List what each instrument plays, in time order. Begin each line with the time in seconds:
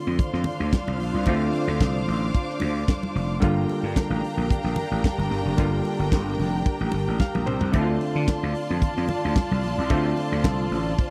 Already playing: clav D3 A3 C4 F4, string section F4 D5 C6
0.07 slap bass F2
0.18 string section D4 C5 F5, kick, closed hi-hat, low conga
0.33 slap bass F2, snare
0.44 open hi-hat, muted conga, low conga
0.60 slap bass D2
0.73 kick, snare, closed hi-hat, high conga
0.87 slap bass C2, high conga
1.00 slap bass A#1, open hi-hat
1.14 slap bass C2
1.26 slap bass D2, clav D3 A3 C4 F4, string section D6, kick, closed hi-hat, muted conga
1.53 open hi-hat, muted conga
1.68 slap bass D2
1.80 slap bass C2, kick, snare, closed hi-hat, high conga
2.08 slap bass A1, open hi-hat
2.35 kick, closed hi-hat
2.50 snare
2.60 slap bass D2, open hi-hat, muted conga
2.88 kick, snare, closed hi-hat, high conga
3.03 high conga
3.15 slap bass F1, open hi-hat
3.40 slap bass G1, clav D3 G3 A#3 F4, string section D4 G4 A#4 G5 A#5, kick, closed hi-hat, muted conga
3.44 string section F5
3.69 open hi-hat, muted conga
3.83 slap bass G2
3.96 kick, snare, closed hi-hat, high conga
4.10 slap bass A1
4.24 open hi-hat
4.37 slap bass A#1
4.50 kick, closed hi-hat, low conga
4.64 slap bass A#1, snare
4.76 open hi-hat, muted conga, low conga
4.91 slap bass A1
5.04 kick, snare, closed hi-hat, high conga
5.18 slap bass G1, high conga
5.31 slap bass G1, open hi-hat
5.45 slap bass F1
5.57 slap bass G1, clav D3 G3 A#3 F4, string section G5, kick, closed hi-hat, muted conga
5.85 open hi-hat, muted conga
5.99 slap bass G1
6.12 slap bass G1, kick, snare, closed hi-hat, high conga
6.39 slap bass F1, open hi-hat
6.66 kick, closed hi-hat
6.80 slap bass A1
6.92 slap bass G1, open hi-hat, muted conga
7.08 slap bass A1
7.20 clav F5, kick, snare, high conga
7.35 slap bass A#1, high conga
7.46 slap bass C2, clav C5, mid tom
7.61 slap bass C2, floor tom
7.72 slap bass D2, clav D3 A3 C4 E4, string section F4 D5 A5 C6, kick, closed hi-hat, muted conga
7.82 clav F4
8.01 open hi-hat, muted conga
8.15 slap bass D3
8.28 kick, snare, closed hi-hat, high conga
8.43 slap bass D2
8.55 open hi-hat
8.70 slap bass F2
8.82 kick, closed hi-hat, low conga
8.96 slap bass F2, snare
9.08 open hi-hat, muted conga, low conga
9.25 slap bass D2
9.36 kick, snare, closed hi-hat, high conga
9.51 slap bass C2, high conga
9.63 slap bass A#1, open hi-hat
9.78 slap bass C2
9.89 slap bass D2, clav D3 A3 C4 F4, string section C5, kick, closed hi-hat, muted conga
10.17 open hi-hat, muted conga
10.32 slap bass D2
10.44 slap bass C2, kick, snare, closed hi-hat, high conga
10.71 slap bass A1, open hi-hat
10.99 kick, closed hi-hat